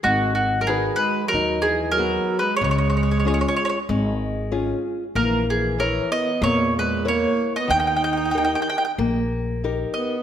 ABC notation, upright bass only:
X:1
M:4/4
L:1/8
Q:1/4=94
K:G#m
V:1 name="Upright bass" clef=bass
G,,,4 D,,4 | C,,4 G,,,4 | A,,,4 E,,4 | D,,4 A,,,4 |]